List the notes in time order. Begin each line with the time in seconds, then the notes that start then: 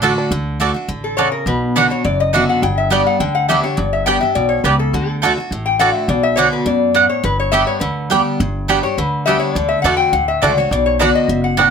Already playing: A1 A2
0.02 D3 A3 D4 F#4 D5 A5
0.18 D4
0.31 D2 D3
0.60 D3 A3 D4 F#4 D5 A5
0.74 D4 F#4
0.88 A1 D3
1.04 A4
1.17 C#3 A3 F#4 C#5 D5 A5
1.32 A#4
1.46 B1 B2 B4
1.76 D3 B3 D4 F#4 D5 F#5
1.90 D4 F#4 C#5
2.05 F#1 F#2 D5
2.20 D#5
2.33 D3 B3 D4 F#4 D5 E5 F#5
2.49 F#5
2.62 G1 G2 G5
2.78 E5
2.90 G3 B3 D4 G4 D5 G5
3.07 F#5
3.20 D2 D3 G5
3.35 F#5
3.49 G3 B3 D4 G4 D5 E5 G5
3.63 D4 G4 C#5
3.77 G1 G2 D5
3.93 E5
4.06 G3 B3 D4 G4 D5 G5
4.21 D4 G4 E5
4.35 B1 B2 D5
4.49 C#5
4.64 C#2 C#3 B3 G4 B4 D5 G5
4.79 A4
4.93 D2 D3 F#4
5.08 A4
5.22 D3 A3 D4 F#4 D5 A5
5.38 D4 F#4
5.51 A1 A2
5.66 G5
5.79 D3 A3 D4 F#4 D5 F#5 A5
5.95 E5
6.08 B1 B2 D5
6.23 E5
6.36 D3 B3 D4 F#4 C#5 D5 F#5
6.53 B4
6.66 F#2 B2 D5
6.94 A2 B3 F#4 D5 F#5
7.09 C#5
7.24 G1 G2 B4
7.40 C#5
7.52 G3 B3 D4 G4 D5 E5 G5
7.67 C#5
7.80 D2 D3 B4
8.10 G3 B3 D4 G4 D5 G5
8.40 G1 G2
8.68 G3 B3 D4 G4 D5 G5
8.83 D4 G4 C#5
8.98 D2 D3 B4
9.26 G3 B3 D4 G4 D5 E5 G5
9.39 C#5
9.55 D2 D3 D5
9.69 E5
9.82 E2 D3 A3 D4 F#4 D5 F#5 A5
9.86 F#4
9.97 G5
10.13 D2 A2 F#5
10.28 E5
10.42 C#2 D3 A3 D4 F#4 D5 A5
10.57 D4 F#4 C#5
10.71 B1 B2 D5
10.86 C#5
10.99 D3 B3 D4 F#4 D5 F#5
11.15 D#5
11.28 F#1 B2 E5
11.44 F#5
11.57 A2 B3 D4 F#4 D5 F#5 G5